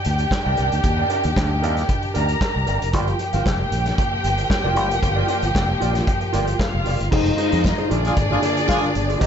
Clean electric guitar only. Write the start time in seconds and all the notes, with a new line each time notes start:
0.19 muted clean electric guitar stroke
0.32 muted clean electric guitar stroke
0.45 A#4 D5 G5
0.57 A#4 D5 G5
0.72 muted clean electric guitar stroke
0.84 muted clean electric guitar stroke
0.97 A#4 D5 G5
1.10 A#4 D5 G5
1.24 muted clean electric guitar stroke
1.50 muted clean electric guitar stroke
1.62 A#4 D5 G5
1.77 muted clean electric guitar stroke
1.88 muted clean electric guitar stroke
2.02 muted clean electric guitar stroke
2.14 A#4 D5 G5
2.28 muted clean electric guitar stroke
2.54 muted clean electric guitar stroke
2.67 A#4 D5 G5
2.81 muted clean electric guitar stroke
2.94 F4 A#4 D5
3.08 muted clean electric guitar stroke
3.20 muted clean electric guitar stroke
3.33 F4 A#4 F5
3.46 muted clean electric guitar stroke
3.60 muted clean electric guitar stroke
3.86 muted clean electric guitar stroke
3.98 muted clean electric guitar stroke
4.12 muted clean electric guitar stroke
4.38 muted clean electric guitar stroke
4.51 muted clean electric guitar stroke
4.64 F4 A#4 D5
4.76 F4 A#4 D5
4.90 muted clean electric guitar stroke
5.02 muted clean electric guitar stroke
5.16 F4 A#4 D5
5.29 F4 A#4 D5
5.43 muted clean electric guitar stroke
5.69 muted clean electric guitar stroke
5.80 F4 A#4 D5
5.94 muted clean electric guitar stroke
6.07 muted clean electric guitar stroke
6.21 muted clean electric guitar stroke
6.33 F4 A#4 D5
6.47 muted clean electric guitar stroke
6.73 muted clean electric guitar stroke
6.85 F4 A#4 D5
6.99 muted clean electric guitar stroke
7.11 D#4 G#4 C5
7.37 D#4 G#4 C5
7.52 D#4 G#4
7.64 muted clean electric guitar stroke
7.77 D#4 G#4 C5
7.90 F4 G#4 D5
8.04 muted clean electric guitar stroke
8.15 muted clean electric guitar stroke
8.29 F4 G#4 D5
8.41 F4 G#4 D5
8.55 muted clean electric guitar stroke
8.67 F4 G#4 F5
8.82 muted clean electric guitar stroke
8.94 muted clean electric guitar stroke
9.08 F4 G#4 D5
9.20 G4 C5 D#5